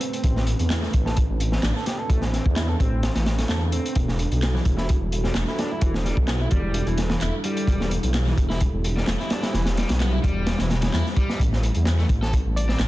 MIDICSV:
0, 0, Header, 1, 6, 480
1, 0, Start_track
1, 0, Key_signature, 0, "minor"
1, 0, Tempo, 465116
1, 248, Time_signature, 4, 2, 24, 8
1, 13291, End_track
2, 0, Start_track
2, 0, Title_t, "Digital synth lead"
2, 0, Program_c, 0, 84
2, 12965, Note_on_c, 0, 74, 92
2, 13154, Note_off_c, 0, 74, 0
2, 13291, End_track
3, 0, Start_track
3, 0, Title_t, "Analog synth pad"
3, 0, Program_c, 1, 89
3, 0, Note_on_c, 1, 57, 79
3, 0, Note_on_c, 1, 60, 72
3, 0, Note_on_c, 1, 62, 75
3, 0, Note_on_c, 1, 67, 74
3, 0, Note_on_c, 1, 71, 87
3, 209, Note_off_c, 1, 67, 0
3, 243, Note_on_c, 1, 69, 74
3, 4046, Note_off_c, 1, 57, 0
3, 4046, Note_off_c, 1, 60, 0
3, 4047, Note_off_c, 1, 71, 0
3, 4086, Note_on_c, 1, 64, 73
3, 4087, Note_on_c, 1, 55, 82
3, 4088, Note_on_c, 1, 66, 74
3, 7889, Note_off_c, 1, 66, 0
3, 7915, Note_on_c, 1, 67, 75
3, 11723, Note_off_c, 1, 67, 0
3, 11724, Note_off_c, 1, 69, 0
3, 11725, Note_off_c, 1, 62, 0
3, 11726, Note_off_c, 1, 64, 0
3, 11766, Note_on_c, 1, 62, 74
3, 11766, Note_on_c, 1, 71, 88
3, 11769, Note_on_c, 1, 60, 75
3, 11770, Note_on_c, 1, 69, 75
3, 13291, Note_off_c, 1, 55, 0
3, 13291, Note_off_c, 1, 60, 0
3, 13291, Note_off_c, 1, 62, 0
3, 13291, Note_off_c, 1, 69, 0
3, 13291, Note_off_c, 1, 71, 0
3, 13291, End_track
4, 0, Start_track
4, 0, Title_t, "Overdriven electric guitar"
4, 0, Program_c, 2, 29
4, 4, Note_on_c, 2, 60, 97
4, 475, Note_off_c, 2, 60, 0
4, 854, Note_on_c, 2, 57, 74
4, 914, Note_off_c, 2, 57, 0
4, 1094, Note_on_c, 2, 69, 72
4, 1193, Note_off_c, 2, 69, 0
4, 1573, Note_on_c, 2, 60, 94
4, 1681, Note_off_c, 2, 60, 0
4, 1688, Note_on_c, 2, 62, 81
4, 1754, Note_off_c, 2, 62, 0
4, 1819, Note_on_c, 2, 69, 74
4, 1925, Note_off_c, 2, 69, 0
4, 1931, Note_on_c, 2, 67, 73
4, 2043, Note_off_c, 2, 67, 0
4, 2057, Note_on_c, 2, 69, 75
4, 2155, Note_off_c, 2, 69, 0
4, 2169, Note_on_c, 2, 57, 76
4, 2288, Note_off_c, 2, 57, 0
4, 2407, Note_on_c, 2, 60, 74
4, 2518, Note_off_c, 2, 60, 0
4, 2648, Note_on_c, 2, 64, 80
4, 2762, Note_off_c, 2, 64, 0
4, 2776, Note_on_c, 2, 69, 77
4, 2835, Note_off_c, 2, 69, 0
4, 2891, Note_on_c, 2, 60, 97
4, 3243, Note_off_c, 2, 60, 0
4, 3258, Note_on_c, 2, 57, 72
4, 3364, Note_off_c, 2, 57, 0
4, 3501, Note_on_c, 2, 57, 72
4, 3600, Note_off_c, 2, 57, 0
4, 3611, Note_on_c, 2, 69, 75
4, 3730, Note_off_c, 2, 69, 0
4, 3850, Note_on_c, 2, 60, 96
4, 4089, Note_off_c, 2, 60, 0
4, 4695, Note_on_c, 2, 52, 74
4, 4754, Note_off_c, 2, 52, 0
4, 4933, Note_on_c, 2, 64, 73
4, 5033, Note_off_c, 2, 64, 0
4, 5413, Note_on_c, 2, 55, 97
4, 5521, Note_off_c, 2, 55, 0
4, 5527, Note_on_c, 2, 57, 78
4, 5594, Note_off_c, 2, 57, 0
4, 5655, Note_on_c, 2, 64, 75
4, 5763, Note_off_c, 2, 64, 0
4, 5768, Note_on_c, 2, 62, 75
4, 5882, Note_off_c, 2, 62, 0
4, 5895, Note_on_c, 2, 64, 75
4, 5994, Note_off_c, 2, 64, 0
4, 6006, Note_on_c, 2, 52, 77
4, 6127, Note_off_c, 2, 52, 0
4, 6242, Note_on_c, 2, 55, 74
4, 6355, Note_off_c, 2, 55, 0
4, 6484, Note_on_c, 2, 59, 79
4, 6600, Note_off_c, 2, 59, 0
4, 6614, Note_on_c, 2, 64, 73
4, 6674, Note_off_c, 2, 64, 0
4, 6724, Note_on_c, 2, 55, 98
4, 7080, Note_off_c, 2, 55, 0
4, 7092, Note_on_c, 2, 52, 73
4, 7201, Note_off_c, 2, 52, 0
4, 7333, Note_on_c, 2, 52, 73
4, 7436, Note_off_c, 2, 52, 0
4, 7448, Note_on_c, 2, 64, 78
4, 7568, Note_off_c, 2, 64, 0
4, 7685, Note_on_c, 2, 55, 96
4, 8155, Note_off_c, 2, 55, 0
4, 8532, Note_on_c, 2, 52, 77
4, 8593, Note_off_c, 2, 52, 0
4, 8770, Note_on_c, 2, 64, 73
4, 8871, Note_off_c, 2, 64, 0
4, 9253, Note_on_c, 2, 55, 96
4, 9361, Note_off_c, 2, 55, 0
4, 9368, Note_on_c, 2, 57, 78
4, 9434, Note_off_c, 2, 57, 0
4, 9491, Note_on_c, 2, 64, 73
4, 9600, Note_off_c, 2, 64, 0
4, 9604, Note_on_c, 2, 62, 74
4, 9720, Note_off_c, 2, 62, 0
4, 9727, Note_on_c, 2, 64, 73
4, 9830, Note_off_c, 2, 64, 0
4, 9840, Note_on_c, 2, 52, 76
4, 9964, Note_off_c, 2, 52, 0
4, 10081, Note_on_c, 2, 55, 74
4, 10195, Note_off_c, 2, 55, 0
4, 10322, Note_on_c, 2, 59, 82
4, 10438, Note_off_c, 2, 59, 0
4, 10449, Note_on_c, 2, 64, 76
4, 10511, Note_off_c, 2, 64, 0
4, 10561, Note_on_c, 2, 55, 96
4, 10918, Note_off_c, 2, 55, 0
4, 10931, Note_on_c, 2, 52, 74
4, 11041, Note_off_c, 2, 52, 0
4, 11170, Note_on_c, 2, 52, 71
4, 11274, Note_off_c, 2, 52, 0
4, 11288, Note_on_c, 2, 64, 78
4, 11408, Note_off_c, 2, 64, 0
4, 11525, Note_on_c, 2, 55, 99
4, 11766, Note_off_c, 2, 55, 0
4, 12374, Note_on_c, 2, 57, 77
4, 12434, Note_off_c, 2, 57, 0
4, 12617, Note_on_c, 2, 69, 73
4, 12715, Note_off_c, 2, 69, 0
4, 13094, Note_on_c, 2, 60, 97
4, 13202, Note_off_c, 2, 60, 0
4, 13209, Note_on_c, 2, 62, 80
4, 13275, Note_off_c, 2, 62, 0
4, 13291, End_track
5, 0, Start_track
5, 0, Title_t, "Detuned saw bass"
5, 0, Program_c, 3, 39
5, 245, Note_on_c, 3, 33, 100
5, 558, Note_off_c, 3, 33, 0
5, 614, Note_on_c, 3, 40, 82
5, 919, Note_off_c, 3, 40, 0
5, 968, Note_on_c, 3, 33, 82
5, 1280, Note_off_c, 3, 33, 0
5, 1334, Note_on_c, 3, 33, 101
5, 1639, Note_off_c, 3, 33, 0
5, 1686, Note_on_c, 3, 33, 99
5, 1779, Note_off_c, 3, 33, 0
5, 2163, Note_on_c, 3, 33, 101
5, 2477, Note_off_c, 3, 33, 0
5, 2535, Note_on_c, 3, 40, 81
5, 2839, Note_off_c, 3, 40, 0
5, 2892, Note_on_c, 3, 33, 81
5, 3202, Note_off_c, 3, 33, 0
5, 3256, Note_on_c, 3, 33, 103
5, 3560, Note_off_c, 3, 33, 0
5, 3607, Note_on_c, 3, 40, 85
5, 3920, Note_off_c, 3, 40, 0
5, 4087, Note_on_c, 3, 28, 100
5, 4399, Note_off_c, 3, 28, 0
5, 4452, Note_on_c, 3, 35, 82
5, 4758, Note_off_c, 3, 35, 0
5, 4805, Note_on_c, 3, 28, 82
5, 5118, Note_off_c, 3, 28, 0
5, 5167, Note_on_c, 3, 28, 101
5, 5475, Note_off_c, 3, 28, 0
5, 5523, Note_on_c, 3, 28, 100
5, 5618, Note_off_c, 3, 28, 0
5, 6003, Note_on_c, 3, 28, 102
5, 6317, Note_off_c, 3, 28, 0
5, 6369, Note_on_c, 3, 35, 82
5, 6676, Note_off_c, 3, 35, 0
5, 6727, Note_on_c, 3, 28, 81
5, 7039, Note_off_c, 3, 28, 0
5, 7085, Note_on_c, 3, 28, 102
5, 7394, Note_off_c, 3, 28, 0
5, 7444, Note_on_c, 3, 28, 101
5, 7538, Note_off_c, 3, 28, 0
5, 7919, Note_on_c, 3, 28, 99
5, 8235, Note_off_c, 3, 28, 0
5, 8292, Note_on_c, 3, 35, 83
5, 8597, Note_off_c, 3, 35, 0
5, 8645, Note_on_c, 3, 28, 81
5, 8958, Note_off_c, 3, 28, 0
5, 9012, Note_on_c, 3, 28, 102
5, 9317, Note_off_c, 3, 28, 0
5, 9365, Note_on_c, 3, 28, 102
5, 9459, Note_off_c, 3, 28, 0
5, 9845, Note_on_c, 3, 28, 100
5, 10158, Note_off_c, 3, 28, 0
5, 10212, Note_on_c, 3, 35, 84
5, 10518, Note_off_c, 3, 35, 0
5, 10566, Note_on_c, 3, 28, 81
5, 10879, Note_off_c, 3, 28, 0
5, 10934, Note_on_c, 3, 28, 102
5, 11239, Note_off_c, 3, 28, 0
5, 11286, Note_on_c, 3, 40, 97
5, 11379, Note_off_c, 3, 40, 0
5, 11760, Note_on_c, 3, 33, 100
5, 12076, Note_off_c, 3, 33, 0
5, 12135, Note_on_c, 3, 40, 82
5, 12439, Note_off_c, 3, 40, 0
5, 12480, Note_on_c, 3, 33, 82
5, 12796, Note_off_c, 3, 33, 0
5, 12855, Note_on_c, 3, 33, 103
5, 13159, Note_off_c, 3, 33, 0
5, 13208, Note_on_c, 3, 33, 102
5, 13291, Note_off_c, 3, 33, 0
5, 13291, End_track
6, 0, Start_track
6, 0, Title_t, "Drums"
6, 8, Note_on_c, 9, 42, 66
6, 111, Note_off_c, 9, 42, 0
6, 138, Note_on_c, 9, 42, 46
6, 241, Note_off_c, 9, 42, 0
6, 243, Note_on_c, 9, 42, 86
6, 246, Note_on_c, 9, 36, 114
6, 346, Note_off_c, 9, 42, 0
6, 349, Note_off_c, 9, 36, 0
6, 377, Note_on_c, 9, 38, 46
6, 480, Note_off_c, 9, 38, 0
6, 483, Note_on_c, 9, 42, 68
6, 586, Note_off_c, 9, 42, 0
6, 612, Note_on_c, 9, 42, 42
6, 715, Note_off_c, 9, 42, 0
6, 724, Note_on_c, 9, 39, 109
6, 725, Note_on_c, 9, 38, 104
6, 731, Note_on_c, 9, 42, 86
6, 828, Note_off_c, 9, 39, 0
6, 829, Note_off_c, 9, 38, 0
6, 835, Note_off_c, 9, 42, 0
6, 853, Note_on_c, 9, 38, 44
6, 956, Note_off_c, 9, 38, 0
6, 964, Note_on_c, 9, 42, 65
6, 969, Note_on_c, 9, 36, 90
6, 1067, Note_off_c, 9, 42, 0
6, 1072, Note_off_c, 9, 36, 0
6, 1094, Note_on_c, 9, 38, 53
6, 1197, Note_off_c, 9, 38, 0
6, 1203, Note_on_c, 9, 42, 87
6, 1211, Note_on_c, 9, 36, 98
6, 1307, Note_off_c, 9, 42, 0
6, 1314, Note_off_c, 9, 36, 0
6, 1447, Note_on_c, 9, 42, 67
6, 1550, Note_off_c, 9, 42, 0
6, 1570, Note_on_c, 9, 38, 48
6, 1673, Note_off_c, 9, 38, 0
6, 1683, Note_on_c, 9, 38, 113
6, 1686, Note_on_c, 9, 39, 106
6, 1687, Note_on_c, 9, 42, 77
6, 1786, Note_off_c, 9, 38, 0
6, 1789, Note_off_c, 9, 39, 0
6, 1790, Note_off_c, 9, 42, 0
6, 1809, Note_on_c, 9, 38, 37
6, 1912, Note_off_c, 9, 38, 0
6, 1921, Note_on_c, 9, 42, 69
6, 1930, Note_on_c, 9, 38, 51
6, 2024, Note_off_c, 9, 42, 0
6, 2033, Note_off_c, 9, 38, 0
6, 2164, Note_on_c, 9, 36, 107
6, 2165, Note_on_c, 9, 42, 80
6, 2267, Note_off_c, 9, 36, 0
6, 2268, Note_off_c, 9, 42, 0
6, 2289, Note_on_c, 9, 38, 54
6, 2392, Note_off_c, 9, 38, 0
6, 2407, Note_on_c, 9, 38, 38
6, 2412, Note_on_c, 9, 42, 60
6, 2511, Note_off_c, 9, 38, 0
6, 2515, Note_off_c, 9, 42, 0
6, 2535, Note_on_c, 9, 36, 89
6, 2638, Note_off_c, 9, 36, 0
6, 2644, Note_on_c, 9, 38, 104
6, 2644, Note_on_c, 9, 42, 86
6, 2647, Note_on_c, 9, 39, 103
6, 2747, Note_off_c, 9, 38, 0
6, 2748, Note_off_c, 9, 42, 0
6, 2750, Note_off_c, 9, 39, 0
6, 2890, Note_on_c, 9, 36, 88
6, 2892, Note_on_c, 9, 42, 59
6, 2994, Note_off_c, 9, 36, 0
6, 2996, Note_off_c, 9, 42, 0
6, 3127, Note_on_c, 9, 42, 78
6, 3131, Note_on_c, 9, 38, 91
6, 3231, Note_off_c, 9, 42, 0
6, 3234, Note_off_c, 9, 38, 0
6, 3255, Note_on_c, 9, 38, 91
6, 3257, Note_on_c, 9, 42, 72
6, 3358, Note_off_c, 9, 38, 0
6, 3360, Note_off_c, 9, 42, 0
6, 3366, Note_on_c, 9, 38, 96
6, 3368, Note_on_c, 9, 42, 73
6, 3469, Note_off_c, 9, 38, 0
6, 3471, Note_off_c, 9, 42, 0
6, 3494, Note_on_c, 9, 42, 83
6, 3496, Note_on_c, 9, 38, 95
6, 3597, Note_off_c, 9, 42, 0
6, 3599, Note_off_c, 9, 38, 0
6, 3601, Note_on_c, 9, 38, 107
6, 3607, Note_on_c, 9, 39, 105
6, 3607, Note_on_c, 9, 42, 72
6, 3704, Note_off_c, 9, 38, 0
6, 3710, Note_off_c, 9, 39, 0
6, 3711, Note_off_c, 9, 42, 0
6, 3842, Note_on_c, 9, 42, 69
6, 3946, Note_off_c, 9, 42, 0
6, 3979, Note_on_c, 9, 42, 44
6, 4080, Note_off_c, 9, 42, 0
6, 4080, Note_on_c, 9, 42, 84
6, 4086, Note_on_c, 9, 36, 96
6, 4184, Note_off_c, 9, 42, 0
6, 4189, Note_off_c, 9, 36, 0
6, 4214, Note_on_c, 9, 38, 46
6, 4317, Note_off_c, 9, 38, 0
6, 4324, Note_on_c, 9, 42, 66
6, 4427, Note_off_c, 9, 42, 0
6, 4455, Note_on_c, 9, 42, 39
6, 4558, Note_off_c, 9, 42, 0
6, 4565, Note_on_c, 9, 39, 102
6, 4566, Note_on_c, 9, 42, 79
6, 4572, Note_on_c, 9, 38, 118
6, 4668, Note_off_c, 9, 39, 0
6, 4669, Note_off_c, 9, 42, 0
6, 4675, Note_off_c, 9, 38, 0
6, 4701, Note_on_c, 9, 38, 45
6, 4801, Note_on_c, 9, 42, 66
6, 4804, Note_off_c, 9, 38, 0
6, 4804, Note_on_c, 9, 36, 103
6, 4904, Note_off_c, 9, 42, 0
6, 4907, Note_off_c, 9, 36, 0
6, 4927, Note_on_c, 9, 38, 50
6, 5030, Note_off_c, 9, 38, 0
6, 5046, Note_on_c, 9, 42, 89
6, 5055, Note_on_c, 9, 36, 114
6, 5149, Note_off_c, 9, 42, 0
6, 5158, Note_off_c, 9, 36, 0
6, 5287, Note_on_c, 9, 42, 66
6, 5390, Note_off_c, 9, 42, 0
6, 5407, Note_on_c, 9, 38, 44
6, 5510, Note_off_c, 9, 38, 0
6, 5516, Note_on_c, 9, 38, 115
6, 5522, Note_on_c, 9, 42, 83
6, 5524, Note_on_c, 9, 39, 101
6, 5619, Note_off_c, 9, 38, 0
6, 5626, Note_off_c, 9, 42, 0
6, 5627, Note_off_c, 9, 39, 0
6, 5646, Note_on_c, 9, 38, 41
6, 5750, Note_off_c, 9, 38, 0
6, 5764, Note_on_c, 9, 42, 65
6, 5767, Note_on_c, 9, 38, 57
6, 5867, Note_off_c, 9, 42, 0
6, 5871, Note_off_c, 9, 38, 0
6, 6000, Note_on_c, 9, 42, 82
6, 6004, Note_on_c, 9, 36, 114
6, 6103, Note_off_c, 9, 42, 0
6, 6107, Note_off_c, 9, 36, 0
6, 6134, Note_on_c, 9, 38, 52
6, 6237, Note_off_c, 9, 38, 0
6, 6249, Note_on_c, 9, 38, 42
6, 6252, Note_on_c, 9, 42, 69
6, 6352, Note_off_c, 9, 38, 0
6, 6356, Note_off_c, 9, 42, 0
6, 6368, Note_on_c, 9, 36, 88
6, 6471, Note_off_c, 9, 36, 0
6, 6477, Note_on_c, 9, 38, 100
6, 6482, Note_on_c, 9, 39, 100
6, 6483, Note_on_c, 9, 42, 80
6, 6580, Note_off_c, 9, 38, 0
6, 6585, Note_off_c, 9, 39, 0
6, 6587, Note_off_c, 9, 42, 0
6, 6716, Note_on_c, 9, 42, 65
6, 6726, Note_on_c, 9, 36, 86
6, 6819, Note_off_c, 9, 42, 0
6, 6829, Note_off_c, 9, 36, 0
6, 6957, Note_on_c, 9, 42, 95
6, 7060, Note_off_c, 9, 42, 0
6, 7087, Note_on_c, 9, 42, 38
6, 7191, Note_off_c, 9, 42, 0
6, 7199, Note_on_c, 9, 42, 64
6, 7205, Note_on_c, 9, 38, 51
6, 7302, Note_off_c, 9, 42, 0
6, 7309, Note_off_c, 9, 38, 0
6, 7325, Note_on_c, 9, 38, 111
6, 7428, Note_off_c, 9, 38, 0
6, 7440, Note_on_c, 9, 42, 89
6, 7443, Note_on_c, 9, 39, 98
6, 7543, Note_off_c, 9, 42, 0
6, 7546, Note_off_c, 9, 39, 0
6, 7676, Note_on_c, 9, 42, 70
6, 7780, Note_off_c, 9, 42, 0
6, 7809, Note_on_c, 9, 42, 43
6, 7913, Note_off_c, 9, 42, 0
6, 7920, Note_on_c, 9, 36, 97
6, 7929, Note_on_c, 9, 42, 79
6, 8023, Note_off_c, 9, 36, 0
6, 8032, Note_off_c, 9, 42, 0
6, 8057, Note_on_c, 9, 38, 46
6, 8160, Note_off_c, 9, 38, 0
6, 8164, Note_on_c, 9, 42, 65
6, 8267, Note_off_c, 9, 42, 0
6, 8288, Note_on_c, 9, 42, 43
6, 8391, Note_off_c, 9, 42, 0
6, 8399, Note_on_c, 9, 42, 90
6, 8403, Note_on_c, 9, 39, 96
6, 8407, Note_on_c, 9, 38, 98
6, 8502, Note_off_c, 9, 42, 0
6, 8506, Note_off_c, 9, 39, 0
6, 8510, Note_off_c, 9, 38, 0
6, 8530, Note_on_c, 9, 38, 42
6, 8633, Note_off_c, 9, 38, 0
6, 8644, Note_on_c, 9, 36, 99
6, 8648, Note_on_c, 9, 42, 73
6, 8747, Note_off_c, 9, 36, 0
6, 8751, Note_off_c, 9, 42, 0
6, 8772, Note_on_c, 9, 38, 49
6, 8875, Note_off_c, 9, 38, 0
6, 8880, Note_on_c, 9, 42, 92
6, 8888, Note_on_c, 9, 36, 100
6, 8984, Note_off_c, 9, 42, 0
6, 8991, Note_off_c, 9, 36, 0
6, 9127, Note_on_c, 9, 42, 72
6, 9230, Note_off_c, 9, 42, 0
6, 9261, Note_on_c, 9, 38, 43
6, 9364, Note_off_c, 9, 38, 0
6, 9364, Note_on_c, 9, 38, 106
6, 9365, Note_on_c, 9, 39, 99
6, 9367, Note_on_c, 9, 42, 91
6, 9467, Note_off_c, 9, 38, 0
6, 9468, Note_off_c, 9, 39, 0
6, 9470, Note_off_c, 9, 42, 0
6, 9492, Note_on_c, 9, 38, 42
6, 9595, Note_off_c, 9, 38, 0
6, 9601, Note_on_c, 9, 42, 73
6, 9605, Note_on_c, 9, 38, 105
6, 9704, Note_off_c, 9, 42, 0
6, 9708, Note_off_c, 9, 38, 0
6, 9729, Note_on_c, 9, 38, 94
6, 9736, Note_on_c, 9, 42, 81
6, 9832, Note_off_c, 9, 38, 0
6, 9840, Note_off_c, 9, 42, 0
6, 9841, Note_on_c, 9, 38, 93
6, 9851, Note_on_c, 9, 42, 70
6, 9944, Note_off_c, 9, 38, 0
6, 9954, Note_off_c, 9, 42, 0
6, 9965, Note_on_c, 9, 38, 98
6, 9973, Note_on_c, 9, 42, 69
6, 10069, Note_off_c, 9, 38, 0
6, 10076, Note_off_c, 9, 42, 0
6, 10086, Note_on_c, 9, 42, 74
6, 10093, Note_on_c, 9, 38, 104
6, 10189, Note_off_c, 9, 42, 0
6, 10196, Note_off_c, 9, 38, 0
6, 10207, Note_on_c, 9, 42, 74
6, 10218, Note_on_c, 9, 38, 108
6, 10310, Note_off_c, 9, 42, 0
6, 10318, Note_on_c, 9, 42, 79
6, 10321, Note_off_c, 9, 38, 0
6, 10324, Note_on_c, 9, 38, 113
6, 10325, Note_on_c, 9, 39, 100
6, 10421, Note_off_c, 9, 42, 0
6, 10427, Note_off_c, 9, 38, 0
6, 10428, Note_off_c, 9, 39, 0
6, 10567, Note_on_c, 9, 36, 100
6, 10570, Note_on_c, 9, 42, 66
6, 10670, Note_off_c, 9, 36, 0
6, 10673, Note_off_c, 9, 42, 0
6, 10802, Note_on_c, 9, 42, 81
6, 10803, Note_on_c, 9, 38, 109
6, 10905, Note_off_c, 9, 42, 0
6, 10906, Note_off_c, 9, 38, 0
6, 10924, Note_on_c, 9, 38, 104
6, 10936, Note_on_c, 9, 42, 76
6, 11027, Note_off_c, 9, 38, 0
6, 11039, Note_off_c, 9, 42, 0
6, 11045, Note_on_c, 9, 38, 94
6, 11049, Note_on_c, 9, 42, 73
6, 11149, Note_off_c, 9, 38, 0
6, 11152, Note_off_c, 9, 42, 0
6, 11164, Note_on_c, 9, 42, 83
6, 11175, Note_on_c, 9, 38, 97
6, 11268, Note_off_c, 9, 42, 0
6, 11279, Note_off_c, 9, 38, 0
6, 11281, Note_on_c, 9, 38, 98
6, 11286, Note_on_c, 9, 39, 101
6, 11289, Note_on_c, 9, 42, 71
6, 11384, Note_off_c, 9, 38, 0
6, 11389, Note_off_c, 9, 39, 0
6, 11392, Note_off_c, 9, 42, 0
6, 11414, Note_on_c, 9, 38, 41
6, 11517, Note_off_c, 9, 38, 0
6, 11521, Note_on_c, 9, 42, 55
6, 11523, Note_on_c, 9, 36, 91
6, 11625, Note_off_c, 9, 42, 0
6, 11627, Note_off_c, 9, 36, 0
6, 11656, Note_on_c, 9, 38, 50
6, 11759, Note_off_c, 9, 38, 0
6, 11761, Note_on_c, 9, 36, 101
6, 11774, Note_on_c, 9, 42, 89
6, 11864, Note_off_c, 9, 36, 0
6, 11877, Note_off_c, 9, 42, 0
6, 11896, Note_on_c, 9, 38, 47
6, 12000, Note_off_c, 9, 38, 0
6, 12004, Note_on_c, 9, 42, 70
6, 12108, Note_off_c, 9, 42, 0
6, 12120, Note_on_c, 9, 42, 40
6, 12223, Note_off_c, 9, 42, 0
6, 12234, Note_on_c, 9, 38, 114
6, 12249, Note_on_c, 9, 39, 100
6, 12251, Note_on_c, 9, 42, 89
6, 12337, Note_off_c, 9, 38, 0
6, 12352, Note_off_c, 9, 39, 0
6, 12355, Note_off_c, 9, 42, 0
6, 12372, Note_on_c, 9, 38, 41
6, 12476, Note_off_c, 9, 38, 0
6, 12480, Note_on_c, 9, 36, 101
6, 12483, Note_on_c, 9, 42, 72
6, 12584, Note_off_c, 9, 36, 0
6, 12587, Note_off_c, 9, 42, 0
6, 12615, Note_on_c, 9, 38, 54
6, 12719, Note_off_c, 9, 38, 0
6, 12726, Note_on_c, 9, 36, 112
6, 12727, Note_on_c, 9, 42, 94
6, 12830, Note_off_c, 9, 36, 0
6, 12831, Note_off_c, 9, 42, 0
6, 12973, Note_on_c, 9, 42, 68
6, 13076, Note_off_c, 9, 42, 0
6, 13093, Note_on_c, 9, 38, 43
6, 13196, Note_off_c, 9, 38, 0
6, 13200, Note_on_c, 9, 42, 84
6, 13205, Note_on_c, 9, 38, 106
6, 13207, Note_on_c, 9, 39, 104
6, 13291, Note_off_c, 9, 38, 0
6, 13291, Note_off_c, 9, 39, 0
6, 13291, Note_off_c, 9, 42, 0
6, 13291, End_track
0, 0, End_of_file